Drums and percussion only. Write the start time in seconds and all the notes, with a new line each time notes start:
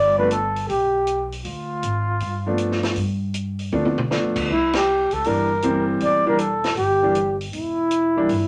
0.31 closed hi-hat
0.56 open hi-hat
0.70 open hi-hat
1.07 closed hi-hat
1.32 open hi-hat
1.45 open hi-hat
1.83 closed hi-hat
2.20 open hi-hat
2.58 closed hi-hat
2.72 snare
2.83 snare, open hi-hat
2.96 open hi-hat
3.34 closed hi-hat
3.59 open hi-hat
3.73 high tom
3.85 high tom
3.98 floor tom
4.11 snare
4.36 kick, crash
4.73 snare, ride
5.11 open hi-hat
5.24 open hi-hat
5.62 closed hi-hat
6.00 open hi-hat
6.39 closed hi-hat
6.64 snare, open hi-hat
6.77 open hi-hat
7.15 closed hi-hat
7.41 open hi-hat
7.53 open hi-hat
7.91 closed hi-hat
8.29 open hi-hat